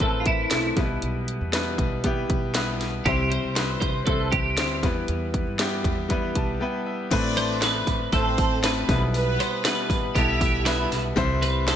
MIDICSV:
0, 0, Header, 1, 6, 480
1, 0, Start_track
1, 0, Key_signature, 0, "minor"
1, 0, Tempo, 507185
1, 974, Time_signature, 4, 2, 24, 8
1, 11129, End_track
2, 0, Start_track
2, 0, Title_t, "Clean electric guitar"
2, 0, Program_c, 0, 27
2, 14, Note_on_c, 0, 69, 93
2, 191, Note_on_c, 0, 65, 55
2, 193, Note_off_c, 0, 69, 0
2, 249, Note_off_c, 0, 65, 0
2, 253, Note_on_c, 0, 64, 78
2, 700, Note_off_c, 0, 64, 0
2, 2891, Note_on_c, 0, 67, 91
2, 3126, Note_on_c, 0, 72, 93
2, 3140, Note_off_c, 0, 67, 0
2, 3589, Note_off_c, 0, 72, 0
2, 3600, Note_on_c, 0, 72, 85
2, 3830, Note_off_c, 0, 72, 0
2, 3839, Note_on_c, 0, 69, 100
2, 4085, Note_on_c, 0, 67, 83
2, 4094, Note_off_c, 0, 69, 0
2, 4536, Note_off_c, 0, 67, 0
2, 6975, Note_on_c, 0, 72, 108
2, 7218, Note_off_c, 0, 72, 0
2, 7222, Note_on_c, 0, 71, 105
2, 7688, Note_off_c, 0, 71, 0
2, 7691, Note_on_c, 0, 69, 93
2, 8139, Note_off_c, 0, 69, 0
2, 8180, Note_on_c, 0, 71, 85
2, 8512, Note_off_c, 0, 71, 0
2, 8899, Note_on_c, 0, 72, 103
2, 9129, Note_off_c, 0, 72, 0
2, 9132, Note_on_c, 0, 71, 111
2, 9603, Note_on_c, 0, 67, 91
2, 9628, Note_off_c, 0, 71, 0
2, 10082, Note_on_c, 0, 64, 76
2, 10103, Note_off_c, 0, 67, 0
2, 10423, Note_off_c, 0, 64, 0
2, 10811, Note_on_c, 0, 71, 95
2, 11036, Note_off_c, 0, 71, 0
2, 11054, Note_on_c, 0, 69, 92
2, 11129, Note_off_c, 0, 69, 0
2, 11129, End_track
3, 0, Start_track
3, 0, Title_t, "Violin section"
3, 0, Program_c, 1, 48
3, 6739, Note_on_c, 1, 62, 98
3, 6741, Note_on_c, 1, 74, 110
3, 7419, Note_off_c, 1, 62, 0
3, 7419, Note_off_c, 1, 74, 0
3, 7695, Note_on_c, 1, 60, 100
3, 7696, Note_on_c, 1, 72, 115
3, 8377, Note_off_c, 1, 60, 0
3, 8377, Note_off_c, 1, 72, 0
3, 8657, Note_on_c, 1, 59, 106
3, 8662, Note_on_c, 1, 71, 127
3, 9338, Note_off_c, 1, 59, 0
3, 9340, Note_off_c, 1, 71, 0
3, 9615, Note_on_c, 1, 64, 100
3, 9618, Note_on_c, 1, 76, 108
3, 10297, Note_off_c, 1, 64, 0
3, 10298, Note_off_c, 1, 76, 0
3, 11129, End_track
4, 0, Start_track
4, 0, Title_t, "Grand piano"
4, 0, Program_c, 2, 0
4, 0, Control_c, 2, 64, 127
4, 0, Note_on_c, 2, 45, 70
4, 0, Note_on_c, 2, 57, 57
4, 0, Note_on_c, 2, 60, 59
4, 0, Note_on_c, 2, 64, 58
4, 0, Note_on_c, 2, 71, 66
4, 6, Note_off_c, 2, 60, 0
4, 6, Note_on_c, 2, 60, 60
4, 12, Note_off_c, 2, 64, 0
4, 12, Note_on_c, 2, 64, 62
4, 18, Note_on_c, 2, 70, 59
4, 76, Note_off_c, 2, 71, 0
4, 76, Note_on_c, 2, 71, 70
4, 383, Note_off_c, 2, 57, 0
4, 386, Note_off_c, 2, 60, 0
4, 389, Note_off_c, 2, 64, 0
4, 421, Note_off_c, 2, 71, 0
4, 486, Note_on_c, 2, 57, 64
4, 490, Note_on_c, 2, 60, 56
4, 499, Note_on_c, 2, 64, 60
4, 502, Note_on_c, 2, 69, 63
4, 724, Note_off_c, 2, 64, 0
4, 729, Note_on_c, 2, 55, 75
4, 730, Note_off_c, 2, 57, 0
4, 732, Note_off_c, 2, 60, 0
4, 734, Note_on_c, 2, 59, 57
4, 737, Note_on_c, 2, 47, 63
4, 738, Note_off_c, 2, 69, 0
4, 738, Note_on_c, 2, 64, 65
4, 744, Control_c, 2, 64, 0
4, 745, Note_off_c, 2, 45, 0
4, 745, Note_off_c, 2, 70, 0
4, 746, Note_on_c, 2, 71, 75
4, 924, Control_c, 2, 64, 127
4, 1307, Note_off_c, 2, 55, 0
4, 1310, Note_off_c, 2, 59, 0
4, 1312, Note_off_c, 2, 64, 0
4, 1316, Note_off_c, 2, 71, 0
4, 1418, Note_off_c, 2, 47, 0
4, 1441, Note_on_c, 2, 55, 85
4, 1446, Note_on_c, 2, 59, 72
4, 1455, Note_on_c, 2, 64, 73
4, 1462, Note_on_c, 2, 71, 92
4, 1824, Note_off_c, 2, 55, 0
4, 1826, Note_off_c, 2, 59, 0
4, 1831, Note_off_c, 2, 64, 0
4, 1835, Note_off_c, 2, 71, 0
4, 1932, Note_on_c, 2, 55, 80
4, 1934, Note_on_c, 2, 59, 72
4, 1942, Note_on_c, 2, 64, 72
4, 1947, Note_on_c, 2, 67, 86
4, 2309, Note_off_c, 2, 55, 0
4, 2310, Note_off_c, 2, 59, 0
4, 2315, Note_off_c, 2, 64, 0
4, 2317, Note_off_c, 2, 67, 0
4, 2406, Note_on_c, 2, 55, 76
4, 2412, Note_on_c, 2, 59, 75
4, 2419, Note_on_c, 2, 64, 68
4, 2426, Note_on_c, 2, 71, 84
4, 2786, Note_off_c, 2, 55, 0
4, 2789, Note_off_c, 2, 59, 0
4, 2793, Note_off_c, 2, 64, 0
4, 2796, Note_off_c, 2, 71, 0
4, 2893, Note_on_c, 2, 55, 92
4, 2898, Note_on_c, 2, 60, 96
4, 2902, Note_on_c, 2, 48, 64
4, 2904, Note_on_c, 2, 64, 91
4, 2907, Control_c, 2, 64, 0
4, 2912, Note_on_c, 2, 72, 108
4, 3077, Control_c, 2, 64, 127
4, 3270, Note_off_c, 2, 55, 0
4, 3272, Note_off_c, 2, 60, 0
4, 3275, Note_off_c, 2, 64, 0
4, 3279, Note_off_c, 2, 72, 0
4, 3371, Note_on_c, 2, 55, 72
4, 3376, Note_on_c, 2, 60, 63
4, 3382, Note_on_c, 2, 64, 64
4, 3390, Note_on_c, 2, 71, 85
4, 3580, Note_off_c, 2, 48, 0
4, 3749, Note_off_c, 2, 55, 0
4, 3752, Note_off_c, 2, 60, 0
4, 3755, Note_off_c, 2, 64, 0
4, 3758, Note_off_c, 2, 71, 0
4, 3848, Note_on_c, 2, 55, 68
4, 3855, Note_on_c, 2, 60, 62
4, 3862, Note_on_c, 2, 64, 61
4, 3867, Note_on_c, 2, 72, 73
4, 4228, Note_off_c, 2, 55, 0
4, 4231, Note_off_c, 2, 60, 0
4, 4235, Note_off_c, 2, 64, 0
4, 4237, Note_off_c, 2, 72, 0
4, 4330, Note_on_c, 2, 55, 62
4, 4336, Note_on_c, 2, 60, 65
4, 4342, Note_on_c, 2, 64, 57
4, 4349, Note_on_c, 2, 72, 74
4, 4553, Note_off_c, 2, 55, 0
4, 4565, Note_off_c, 2, 64, 0
4, 4568, Note_on_c, 2, 55, 75
4, 4573, Note_on_c, 2, 59, 67
4, 4575, Note_off_c, 2, 60, 0
4, 4575, Note_on_c, 2, 52, 57
4, 4579, Note_on_c, 2, 64, 66
4, 4581, Note_off_c, 2, 72, 0
4, 4585, Note_on_c, 2, 71, 80
4, 4587, Control_c, 2, 64, 0
4, 4764, Control_c, 2, 64, 127
4, 5147, Note_off_c, 2, 55, 0
4, 5150, Note_off_c, 2, 59, 0
4, 5153, Note_off_c, 2, 64, 0
4, 5156, Note_off_c, 2, 71, 0
4, 5257, Note_off_c, 2, 52, 0
4, 5283, Note_on_c, 2, 55, 87
4, 5290, Note_on_c, 2, 59, 73
4, 5296, Note_on_c, 2, 64, 84
4, 5303, Note_on_c, 2, 67, 95
4, 5665, Note_off_c, 2, 55, 0
4, 5669, Note_off_c, 2, 59, 0
4, 5672, Note_off_c, 2, 64, 0
4, 5675, Note_off_c, 2, 67, 0
4, 5761, Note_on_c, 2, 55, 84
4, 5770, Note_on_c, 2, 59, 76
4, 5776, Note_on_c, 2, 64, 74
4, 5783, Note_on_c, 2, 71, 87
4, 6014, Note_on_c, 2, 81, 70
4, 6144, Note_off_c, 2, 55, 0
4, 6148, Note_off_c, 2, 59, 0
4, 6151, Note_off_c, 2, 64, 0
4, 6155, Note_off_c, 2, 71, 0
4, 6237, Note_off_c, 2, 81, 0
4, 6245, Note_on_c, 2, 55, 77
4, 6252, Note_on_c, 2, 59, 74
4, 6255, Note_on_c, 2, 79, 63
4, 6259, Note_on_c, 2, 64, 70
4, 6266, Note_on_c, 2, 71, 84
4, 6478, Note_off_c, 2, 79, 0
4, 6494, Note_on_c, 2, 76, 68
4, 6626, Note_off_c, 2, 55, 0
4, 6630, Note_off_c, 2, 59, 0
4, 6633, Note_off_c, 2, 64, 0
4, 6636, Note_off_c, 2, 71, 0
4, 6717, Note_off_c, 2, 76, 0
4, 6724, Note_on_c, 2, 57, 110
4, 6729, Note_on_c, 2, 60, 106
4, 6731, Note_on_c, 2, 45, 71
4, 6732, Note_on_c, 2, 64, 99
4, 6740, Note_on_c, 2, 71, 125
4, 6746, Control_c, 2, 64, 0
4, 6907, Control_c, 2, 64, 127
4, 7106, Note_off_c, 2, 57, 0
4, 7108, Note_off_c, 2, 60, 0
4, 7110, Note_off_c, 2, 64, 0
4, 7114, Note_off_c, 2, 71, 0
4, 7208, Note_on_c, 2, 57, 72
4, 7215, Note_on_c, 2, 60, 71
4, 7219, Note_on_c, 2, 64, 63
4, 7227, Note_on_c, 2, 71, 72
4, 7415, Note_off_c, 2, 45, 0
4, 7587, Note_off_c, 2, 57, 0
4, 7591, Note_off_c, 2, 60, 0
4, 7593, Note_off_c, 2, 64, 0
4, 7597, Note_off_c, 2, 71, 0
4, 7694, Note_on_c, 2, 57, 73
4, 7698, Note_on_c, 2, 60, 60
4, 7705, Note_on_c, 2, 64, 61
4, 7715, Note_on_c, 2, 72, 74
4, 8070, Note_off_c, 2, 57, 0
4, 8073, Note_off_c, 2, 60, 0
4, 8076, Note_off_c, 2, 64, 0
4, 8081, Note_off_c, 2, 72, 0
4, 8168, Note_on_c, 2, 57, 69
4, 8176, Note_on_c, 2, 60, 65
4, 8180, Note_on_c, 2, 64, 58
4, 8190, Note_on_c, 2, 69, 70
4, 8404, Note_off_c, 2, 64, 0
4, 8408, Note_on_c, 2, 55, 80
4, 8411, Note_off_c, 2, 57, 0
4, 8415, Note_off_c, 2, 60, 0
4, 8416, Note_on_c, 2, 59, 70
4, 8418, Note_on_c, 2, 47, 60
4, 8418, Note_on_c, 2, 64, 73
4, 8422, Note_off_c, 2, 69, 0
4, 8428, Control_c, 2, 64, 0
4, 8428, Note_on_c, 2, 71, 74
4, 8580, Control_c, 2, 64, 127
4, 8987, Note_off_c, 2, 55, 0
4, 8991, Note_off_c, 2, 59, 0
4, 8992, Note_off_c, 2, 64, 0
4, 8997, Note_off_c, 2, 71, 0
4, 9098, Note_off_c, 2, 47, 0
4, 9127, Note_on_c, 2, 55, 74
4, 9130, Note_on_c, 2, 59, 69
4, 9140, Note_on_c, 2, 64, 60
4, 9144, Note_on_c, 2, 71, 76
4, 9507, Note_off_c, 2, 55, 0
4, 9509, Note_off_c, 2, 59, 0
4, 9513, Note_off_c, 2, 64, 0
4, 9516, Note_off_c, 2, 71, 0
4, 9610, Note_on_c, 2, 55, 66
4, 9614, Note_on_c, 2, 59, 72
4, 9618, Note_on_c, 2, 64, 63
4, 9626, Note_on_c, 2, 69, 79
4, 9988, Note_off_c, 2, 55, 0
4, 9990, Note_off_c, 2, 59, 0
4, 9992, Note_off_c, 2, 64, 0
4, 9997, Note_off_c, 2, 69, 0
4, 10089, Note_on_c, 2, 55, 70
4, 10095, Note_on_c, 2, 59, 66
4, 10100, Note_on_c, 2, 64, 65
4, 10106, Note_on_c, 2, 71, 78
4, 10468, Note_off_c, 2, 55, 0
4, 10471, Note_off_c, 2, 59, 0
4, 10473, Note_off_c, 2, 64, 0
4, 10477, Note_off_c, 2, 71, 0
4, 10559, Note_on_c, 2, 55, 118
4, 10566, Note_on_c, 2, 60, 109
4, 10569, Note_on_c, 2, 48, 75
4, 10570, Note_on_c, 2, 64, 101
4, 10577, Note_on_c, 2, 72, 127
4, 10587, Control_c, 2, 64, 0
4, 10755, Control_c, 2, 64, 127
4, 10943, Note_off_c, 2, 55, 0
4, 10946, Note_off_c, 2, 60, 0
4, 10949, Note_off_c, 2, 64, 0
4, 10952, Note_off_c, 2, 72, 0
4, 11038, Note_on_c, 2, 55, 77
4, 11045, Note_on_c, 2, 60, 67
4, 11050, Note_on_c, 2, 64, 76
4, 11056, Note_on_c, 2, 72, 77
4, 11129, Note_off_c, 2, 48, 0
4, 11129, Note_off_c, 2, 55, 0
4, 11129, Note_off_c, 2, 60, 0
4, 11129, Note_off_c, 2, 64, 0
4, 11129, Note_off_c, 2, 72, 0
4, 11129, End_track
5, 0, Start_track
5, 0, Title_t, "Upright bass"
5, 0, Program_c, 3, 32
5, 1, Note_on_c, 3, 33, 89
5, 453, Note_off_c, 3, 33, 0
5, 489, Note_on_c, 3, 35, 82
5, 714, Note_off_c, 3, 35, 0
5, 725, Note_on_c, 3, 35, 89
5, 952, Note_off_c, 3, 35, 0
5, 971, Note_on_c, 3, 35, 87
5, 1307, Note_off_c, 3, 35, 0
5, 1335, Note_on_c, 3, 40, 70
5, 1669, Note_off_c, 3, 40, 0
5, 1687, Note_on_c, 3, 35, 78
5, 2137, Note_off_c, 3, 35, 0
5, 2172, Note_on_c, 3, 35, 82
5, 2857, Note_off_c, 3, 35, 0
5, 2892, Note_on_c, 3, 36, 100
5, 3228, Note_off_c, 3, 36, 0
5, 3250, Note_on_c, 3, 36, 82
5, 3587, Note_off_c, 3, 36, 0
5, 3610, Note_on_c, 3, 36, 83
5, 3835, Note_off_c, 3, 36, 0
5, 3849, Note_on_c, 3, 36, 85
5, 4332, Note_off_c, 3, 36, 0
5, 4332, Note_on_c, 3, 38, 97
5, 4556, Note_off_c, 3, 38, 0
5, 4574, Note_on_c, 3, 40, 91
5, 4797, Note_off_c, 3, 40, 0
5, 4817, Note_on_c, 3, 40, 105
5, 5150, Note_off_c, 3, 40, 0
5, 5176, Note_on_c, 3, 43, 77
5, 5510, Note_off_c, 3, 43, 0
5, 5531, Note_on_c, 3, 40, 81
5, 5979, Note_off_c, 3, 40, 0
5, 6016, Note_on_c, 3, 35, 83
5, 6243, Note_off_c, 3, 35, 0
5, 6732, Note_on_c, 3, 33, 115
5, 7417, Note_off_c, 3, 33, 0
5, 7451, Note_on_c, 3, 33, 75
5, 7675, Note_off_c, 3, 33, 0
5, 7690, Note_on_c, 3, 33, 92
5, 8376, Note_off_c, 3, 33, 0
5, 8410, Note_on_c, 3, 35, 112
5, 8858, Note_off_c, 3, 35, 0
5, 9365, Note_on_c, 3, 33, 75
5, 9593, Note_off_c, 3, 33, 0
5, 9607, Note_on_c, 3, 35, 96
5, 10294, Note_off_c, 3, 35, 0
5, 10331, Note_on_c, 3, 35, 98
5, 10556, Note_off_c, 3, 35, 0
5, 10572, Note_on_c, 3, 36, 115
5, 11129, Note_off_c, 3, 36, 0
5, 11129, End_track
6, 0, Start_track
6, 0, Title_t, "Drums"
6, 0, Note_on_c, 9, 42, 81
6, 3, Note_on_c, 9, 36, 91
6, 95, Note_off_c, 9, 42, 0
6, 98, Note_off_c, 9, 36, 0
6, 243, Note_on_c, 9, 42, 76
6, 246, Note_on_c, 9, 36, 94
6, 337, Note_off_c, 9, 42, 0
6, 341, Note_off_c, 9, 36, 0
6, 478, Note_on_c, 9, 42, 85
6, 481, Note_on_c, 9, 38, 105
6, 573, Note_off_c, 9, 42, 0
6, 576, Note_off_c, 9, 38, 0
6, 725, Note_on_c, 9, 38, 35
6, 726, Note_on_c, 9, 42, 68
6, 727, Note_on_c, 9, 36, 103
6, 819, Note_off_c, 9, 38, 0
6, 821, Note_off_c, 9, 42, 0
6, 822, Note_off_c, 9, 36, 0
6, 967, Note_on_c, 9, 42, 72
6, 1062, Note_off_c, 9, 42, 0
6, 1212, Note_on_c, 9, 42, 74
6, 1307, Note_off_c, 9, 42, 0
6, 1450, Note_on_c, 9, 38, 104
6, 1452, Note_on_c, 9, 42, 89
6, 1545, Note_off_c, 9, 38, 0
6, 1547, Note_off_c, 9, 42, 0
6, 1688, Note_on_c, 9, 36, 86
6, 1693, Note_on_c, 9, 42, 66
6, 1783, Note_off_c, 9, 36, 0
6, 1787, Note_off_c, 9, 42, 0
6, 1929, Note_on_c, 9, 42, 83
6, 1931, Note_on_c, 9, 36, 83
6, 2024, Note_off_c, 9, 42, 0
6, 2026, Note_off_c, 9, 36, 0
6, 2174, Note_on_c, 9, 36, 94
6, 2174, Note_on_c, 9, 42, 78
6, 2269, Note_off_c, 9, 36, 0
6, 2269, Note_off_c, 9, 42, 0
6, 2408, Note_on_c, 9, 42, 90
6, 2411, Note_on_c, 9, 38, 108
6, 2502, Note_off_c, 9, 42, 0
6, 2505, Note_off_c, 9, 38, 0
6, 2656, Note_on_c, 9, 38, 38
6, 2657, Note_on_c, 9, 42, 67
6, 2751, Note_off_c, 9, 38, 0
6, 2752, Note_off_c, 9, 42, 0
6, 2894, Note_on_c, 9, 36, 118
6, 2894, Note_on_c, 9, 42, 69
6, 2989, Note_off_c, 9, 36, 0
6, 2989, Note_off_c, 9, 42, 0
6, 3139, Note_on_c, 9, 42, 71
6, 3233, Note_off_c, 9, 42, 0
6, 3372, Note_on_c, 9, 38, 111
6, 3374, Note_on_c, 9, 42, 91
6, 3467, Note_off_c, 9, 38, 0
6, 3468, Note_off_c, 9, 42, 0
6, 3611, Note_on_c, 9, 36, 88
6, 3617, Note_on_c, 9, 42, 65
6, 3705, Note_off_c, 9, 36, 0
6, 3711, Note_off_c, 9, 42, 0
6, 3849, Note_on_c, 9, 42, 81
6, 3852, Note_on_c, 9, 36, 97
6, 3944, Note_off_c, 9, 42, 0
6, 3946, Note_off_c, 9, 36, 0
6, 4093, Note_on_c, 9, 42, 74
6, 4094, Note_on_c, 9, 36, 95
6, 4188, Note_off_c, 9, 42, 0
6, 4189, Note_off_c, 9, 36, 0
6, 4328, Note_on_c, 9, 42, 94
6, 4331, Note_on_c, 9, 38, 120
6, 4423, Note_off_c, 9, 42, 0
6, 4425, Note_off_c, 9, 38, 0
6, 4573, Note_on_c, 9, 36, 99
6, 4574, Note_on_c, 9, 38, 40
6, 4575, Note_on_c, 9, 42, 72
6, 4668, Note_off_c, 9, 36, 0
6, 4668, Note_off_c, 9, 38, 0
6, 4670, Note_off_c, 9, 42, 0
6, 4810, Note_on_c, 9, 42, 72
6, 4904, Note_off_c, 9, 42, 0
6, 5053, Note_on_c, 9, 36, 85
6, 5055, Note_on_c, 9, 42, 74
6, 5148, Note_off_c, 9, 36, 0
6, 5149, Note_off_c, 9, 42, 0
6, 5292, Note_on_c, 9, 38, 108
6, 5293, Note_on_c, 9, 42, 96
6, 5386, Note_off_c, 9, 38, 0
6, 5388, Note_off_c, 9, 42, 0
6, 5531, Note_on_c, 9, 36, 92
6, 5536, Note_on_c, 9, 42, 64
6, 5626, Note_off_c, 9, 36, 0
6, 5631, Note_off_c, 9, 42, 0
6, 5773, Note_on_c, 9, 36, 88
6, 5773, Note_on_c, 9, 42, 76
6, 5867, Note_off_c, 9, 42, 0
6, 5868, Note_off_c, 9, 36, 0
6, 6014, Note_on_c, 9, 42, 82
6, 6015, Note_on_c, 9, 36, 88
6, 6109, Note_off_c, 9, 42, 0
6, 6110, Note_off_c, 9, 36, 0
6, 6733, Note_on_c, 9, 46, 69
6, 6733, Note_on_c, 9, 49, 93
6, 6734, Note_on_c, 9, 36, 108
6, 6828, Note_off_c, 9, 46, 0
6, 6828, Note_off_c, 9, 49, 0
6, 6829, Note_off_c, 9, 36, 0
6, 6975, Note_on_c, 9, 46, 74
6, 7070, Note_off_c, 9, 46, 0
6, 7210, Note_on_c, 9, 38, 110
6, 7212, Note_on_c, 9, 46, 109
6, 7305, Note_off_c, 9, 38, 0
6, 7306, Note_off_c, 9, 46, 0
6, 7449, Note_on_c, 9, 36, 88
6, 7452, Note_on_c, 9, 46, 60
6, 7544, Note_off_c, 9, 36, 0
6, 7547, Note_off_c, 9, 46, 0
6, 7689, Note_on_c, 9, 46, 85
6, 7691, Note_on_c, 9, 36, 98
6, 7784, Note_off_c, 9, 46, 0
6, 7786, Note_off_c, 9, 36, 0
6, 7931, Note_on_c, 9, 46, 76
6, 7933, Note_on_c, 9, 36, 95
6, 8026, Note_off_c, 9, 46, 0
6, 8028, Note_off_c, 9, 36, 0
6, 8171, Note_on_c, 9, 46, 100
6, 8174, Note_on_c, 9, 38, 110
6, 8266, Note_off_c, 9, 46, 0
6, 8269, Note_off_c, 9, 38, 0
6, 8412, Note_on_c, 9, 36, 112
6, 8412, Note_on_c, 9, 38, 36
6, 8413, Note_on_c, 9, 46, 73
6, 8506, Note_off_c, 9, 36, 0
6, 8506, Note_off_c, 9, 38, 0
6, 8507, Note_off_c, 9, 46, 0
6, 8653, Note_on_c, 9, 46, 78
6, 8747, Note_off_c, 9, 46, 0
6, 8898, Note_on_c, 9, 46, 81
6, 8993, Note_off_c, 9, 46, 0
6, 9132, Note_on_c, 9, 38, 120
6, 9133, Note_on_c, 9, 46, 104
6, 9227, Note_off_c, 9, 38, 0
6, 9228, Note_off_c, 9, 46, 0
6, 9368, Note_on_c, 9, 36, 94
6, 9375, Note_on_c, 9, 46, 64
6, 9462, Note_off_c, 9, 36, 0
6, 9469, Note_off_c, 9, 46, 0
6, 9610, Note_on_c, 9, 36, 94
6, 9613, Note_on_c, 9, 46, 88
6, 9705, Note_off_c, 9, 36, 0
6, 9708, Note_off_c, 9, 46, 0
6, 9852, Note_on_c, 9, 36, 97
6, 9855, Note_on_c, 9, 46, 79
6, 9947, Note_off_c, 9, 36, 0
6, 9949, Note_off_c, 9, 46, 0
6, 10088, Note_on_c, 9, 46, 100
6, 10091, Note_on_c, 9, 38, 115
6, 10183, Note_off_c, 9, 46, 0
6, 10186, Note_off_c, 9, 38, 0
6, 10335, Note_on_c, 9, 38, 40
6, 10336, Note_on_c, 9, 46, 75
6, 10430, Note_off_c, 9, 38, 0
6, 10431, Note_off_c, 9, 46, 0
6, 10571, Note_on_c, 9, 36, 118
6, 10574, Note_on_c, 9, 46, 71
6, 10665, Note_off_c, 9, 36, 0
6, 10668, Note_off_c, 9, 46, 0
6, 10814, Note_on_c, 9, 46, 73
6, 10909, Note_off_c, 9, 46, 0
6, 11051, Note_on_c, 9, 38, 117
6, 11052, Note_on_c, 9, 46, 107
6, 11129, Note_off_c, 9, 38, 0
6, 11129, Note_off_c, 9, 46, 0
6, 11129, End_track
0, 0, End_of_file